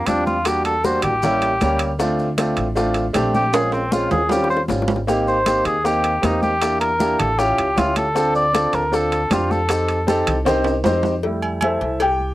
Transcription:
0.06 E2 G3 C4 D4 F4, high bongo, low bongo, high conga, high timbale, maracas
0.26 F4, high bongo, high conga, maracas
0.45 G3 A#3 D4 F#4 G4, high bongo, high conga, high timbale, maracas
0.65 A4, high bongo, high conga, high timbale, maracas
0.84 G3 A#3 D4 F#4 C5, high bongo, high conga, maracas
1.02 A1 G4, high conga, low conga, high timbale, maracas
1.23 G3 A#3 C#4 E4, high bongo, high conga, low conga, maracas
1.42 high bongo, high conga, high timbale, maracas
1.61 D2 G3 A#3 C#4 G4, high bongo, low bongo, high conga, high timbale, maracas
1.79 high bongo, high timbale, maracas
1.99 A3 C4 D4 F4, high bongo, high conga, maracas
2.19 high bongo, high conga, maracas
2.38 A3 C4 D4 F4, high bongo, high conga, high timbale, maracas
2.57 A1, high conga, high timbale, maracas
2.75 A3 C4 D4 F4, high bongo, high conga, maracas
2.94 high bongo, high conga, high timbale, maracas
3.13 A#1 A3 C4 D4 G4, high bongo, low bongo, high conga, high timbale, maracas
3.34 G4, high bongo, high conga, maracas
3.52 G#3 C4 C#4 F4 G#4, high bongo, high timbale, maracas
3.72 C4, high bongo, high conga, high timbale, maracas
3.91 G#3 C4 C#4 F4, high bongo, high conga, maracas
4.11 D#2 G#4, high conga, low conga, low timbale, maracas
4.29 G3 C4 C#4 F4 G4, high bongo, high conga, low timbale, maracas
4.44 high bongo
4.50 C5, high conga, maracas
4.57 high bongo
4.68 G#1 G3 C4 C#4 F4, low bongo, high conga, low timbale, maracas
4.82 low bongo
4.88 low timbale, maracas
4.96 low bongo
5.07 A#3 C4 D#4 G4, high bongo, high conga, maracas
5.27 C5, high bongo, high conga, maracas
5.46 A#3 C4 D#4 G4, high bongo, high conga, high timbale, maracas
5.65 D#2 G#4, high conga, high timbale, maracas
5.84 A#3 C4 D#4 G4, high bongo, high conga, maracas
6.04 high bongo, high conga, high timbale, maracas
6.22 E2 A#3 C4 D#4 G4, high bongo, low bongo, high conga, high timbale, low timbale, maracas
6.42 G4, high bongo, high conga, maracas
6.61 A#3 D4 E4 G4, high bongo, high conga, high timbale, maracas
6.81 A#4, high bongo, high conga, high timbale, maracas
6.99 A#3 D4 E4 G4, high bongo, high conga, maracas
7.19 A1 A4, high conga, low conga, high timbale, maracas
7.38 C#4 E4 F4 G4, high bongo, high conga, maracas
7.58 C#2, high bongo, high conga, high timbale, maracas
7.76 D2 C#4 E4 F4 G4, high bongo, low bongo, high conga, high timbale, low timbale, maracas
7.96 A4, high bongo, high conga, high timbale, maracas
8.15 C4 D4 F4 A4, high bongo, high conga, maracas
8.35 D5, high bongo, high conga, maracas
8.53 C4 D4 F4 A4, high bongo, high conga, high timbale, maracas
8.73 D2 A#4, high conga, high timbale, maracas
8.92 C4 D4 F4 A4, high bongo, high conga, maracas
9.12 high bongo, high conga, high timbale, maracas
9.30 F2 C4 D4 F4 G4, high bongo, low bongo, high conga, high timbale, low timbale, maracas
9.51 A4, high bongo, high conga, maracas
9.69 C4 D#4 G4 A4, high bongo, high conga, high timbale, maracas
9.89 high bongo, high conga, high timbale, maracas
10.07 C4 D#4 G4 A4, high bongo, high conga, maracas
10.27 C2, high conga, low conga, high timbale, maracas
10.45 C4 D#4 G4 C5, high bongo, high conga, low conga, high timbale, maracas
10.64 high bongo, high conga, high timbale, maracas
10.84 F2 C4 D#4 G4 C5, high bongo, low bongo, high conga, low timbale, maracas
11.03 high bongo, low timbale, maracas
11.23 G3 A3 E4, cowbell, high conga
11.43 high conga, low agogo
11.61 E4 A4 C5 E5, cowbell, high conga, low agogo
11.81 C2, cowbell, high conga
12.00 G4 G5, cowbell, high conga, low agogo
12.20 high conga

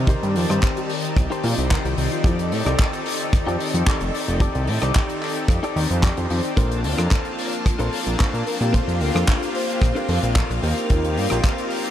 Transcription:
Already playing: C3 D#3 D#4 G4
0.07 C4 D#4 G4 A#4 C5 D5 A5, kick, closed hi-hat
0.23 G2, closed hi-hat
0.36 F2, open hi-hat
0.49 G2 D#4 G4 A#4 C5, cross-stick, closed hi-hat
0.63 kick, clap, closed hi-hat
0.77 G4, closed hi-hat
0.90 open hi-hat
1.05 closed hi-hat
1.16 C2, muted clean electric guitar stroke, kick, cross-stick, closed hi-hat
1.30 D#4 G4 A#4 C5, closed hi-hat
1.43 A#2 C4 D#4 F4 G4 C5 D5, open hi-hat
1.58 C2, closed hi-hat
1.70 D#4 G4 A#4 C5, kick, clap, closed hi-hat
1.85 C2 C4 D#4 G4 C5 D5, closed hi-hat
1.97 C2, muted clean electric guitar stroke, open hi-hat
2.12 F4, closed hi-hat
2.24 F2 C4 D#4 G4 A4 D5, kick, closed hi-hat
2.39 closed hi-hat
2.52 A2, open hi-hat
2.65 C2 D#4 G4 A4 D5, cross-stick, closed hi-hat
2.79 kick, clap, closed hi-hat
2.93 closed hi-hat
3.06 open hi-hat
3.20 closed hi-hat
3.32 F2 C4 D#4 G4 A4 D5, muted clean electric guitar stroke, kick, cross-stick, closed hi-hat
3.46 F2 D#4 G4 A4 D5, closed hi-hat
3.60 open hi-hat
3.74 F2, closed hi-hat
3.86 D#4 G4 A4 D5, kick, clap, closed hi-hat
4.01 F1, closed hi-hat
4.13 muted clean electric guitar stroke, open hi-hat
4.28 F1, closed hi-hat
4.40 C4 D#4 G4 A4 D5, kick, closed hi-hat
4.55 C2, closed hi-hat
4.67 A2, open hi-hat
4.82 C2 D#4 G4 A4 D5, cross-stick, closed hi-hat
4.95 kick, clap, closed hi-hat
5.09 closed hi-hat
5.23 clap, open hi-hat
5.35 closed hi-hat
5.48 F2, muted clean electric guitar stroke, kick, cross-stick, closed hi-hat
5.63 D#4 G4 A4 D5, closed hi-hat
5.75 D#2 C4 D4 D#4 G4 C5, open hi-hat
5.91 F2, closed hi-hat
6.02 C4 D4 D#4 G4 A4 D5, kick, clap, closed hi-hat
6.17 F2 C4 D#4 G4 C5 D5, closed hi-hat
6.30 F2, muted clean electric guitar stroke, open hi-hat
6.45 closed hi-hat
6.56 A#1 A#3 C4 D4 F4 A4 A#4 C5 F5 A5, kick, closed hi-hat
6.72 closed hi-hat
6.84 D2, open hi-hat
6.98 F2 D4 A4 A#4 C5, cross-stick, closed hi-hat
7.11 kick, clap, closed hi-hat
7.25 closed hi-hat
7.39 open hi-hat
7.53 closed hi-hat
7.65 A#1 A#3 C4 D4 F4 A5, muted clean electric guitar stroke, kick, cross-stick, closed hi-hat
7.79 A#1 D4 A4 A#4 C5, closed hi-hat
7.93 open hi-hat
8.07 A#1, closed hi-hat
8.19 D4 A4 A#4 C5, kick, clap, closed hi-hat
8.34 A#2, closed hi-hat
8.45 A#4, muted clean electric guitar stroke, open hi-hat
8.61 A#2 G4, closed hi-hat
8.73 A#3 C4 D4 F4 G4 A4 A#4 C5, kick, closed hi-hat
8.88 F2, closed hi-hat
9.00 D2 A#4, open hi-hat
9.14 F2 D4 A4 A#4 C5, cross-stick, closed hi-hat
9.28 kick, clap, closed hi-hat
9.43 closed hi-hat
9.55 C5, open hi-hat
9.70 closed hi-hat
9.81 A#1, muted clean electric guitar stroke, kick, cross-stick, closed hi-hat
9.95 D4 A4 A#4 C5, closed hi-hat
10.08 F2 A#3 C4 D4 F4, open hi-hat
10.23 A#1, closed hi-hat
10.35 D4 A4 A#4 C5, kick, clap, closed hi-hat
10.49 A#1 A#3 C4 D#4 F4 A#4, closed hi-hat
10.62 D#2 D#4 F4 G4 A#4 C5, open hi-hat
10.78 closed hi-hat
10.89 D#2 A#3 C4 D#4 F4 G4, kick, closed hi-hat
11.04 closed hi-hat
11.17 G2, open hi-hat
11.30 A#1 D#4 F4 G4 C5, cross-stick, closed hi-hat
11.44 kick, clap, closed hi-hat
11.58 closed hi-hat
11.70 open hi-hat
11.85 closed hi-hat

